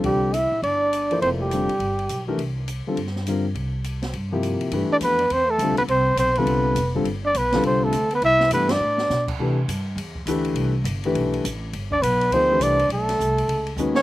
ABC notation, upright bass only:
X:1
M:4/4
L:1/8
Q:"Swing" 1/4=205
K:C
V:1 name="Upright bass" clef=bass
C,,3 _B,,, G,,,4 | F,,,3 G,, G,,,2 B,,,2 | C,,3 z G,,4 | C,,4 G,,3 z |
G,, z F,,2 E,,2 (3D,, C,, B,,, | C,,2 B,,,2 C,,2 F,,,2 | G,,,2 B,,,2 C,,2 D,,2 | C,,2 G,,2 A,,2 B,,2 |
C,2 G,,2 E,,2 D,,2 | C,,2 G,,,2 B,,,2 A,,,2 | G,,,2 B,,,2 D,,2 C,,2 | B,,,2 C,,2 ^C,,2 ^D,,2 |]